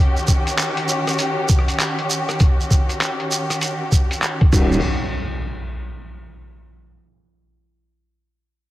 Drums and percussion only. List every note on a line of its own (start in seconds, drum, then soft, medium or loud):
0.17 shekere soft
0.28 kick medium
0.28 shekere loud
0.47 closed hi-hat soft
0.47 shekere soft
0.58 clap loud
0.58 closed hi-hat medium
0.58 shekere medium
0.77 closed hi-hat soft
0.88 shekere medium
1.07 cross-stick soft
1.07 closed hi-hat medium
1.07 shekere soft
1.19 closed hi-hat medium
1.19 shekere medium
1.49 kick loud
1.49 shekere loud
1.59 cross-stick soft
1.68 closed hi-hat medium
1.68 shekere soft
1.80 clap loud
1.80 closed hi-hat medium
1.80 shekere soft
1.99 closed hi-hat soft
2.10 shekere loud
2.29 cross-stick soft
2.29 closed hi-hat soft
2.29 shekere soft
2.40 kick loud
2.40 closed hi-hat medium
2.40 shekere medium
2.61 shekere soft
2.71 kick medium
2.71 shekere loud
2.89 closed hi-hat soft
2.89 shekere soft
3.01 clap loud
3.01 closed hi-hat medium
3.01 shekere medium
3.20 closed hi-hat soft
3.32 shekere medium
3.50 cross-stick soft
3.50 closed hi-hat medium
3.50 shekere soft
3.61 closed hi-hat medium
3.61 shekere medium
3.92 kick medium
3.92 shekere medium
4.11 closed hi-hat soft
4.11 shekere soft
4.22 clap loud
4.22 closed hi-hat medium
4.22 shekere medium
4.41 kick loud
4.41 closed hi-hat soft
4.52 kick loud
4.52 crash medium
4.52 shekere loud
4.72 shekere soft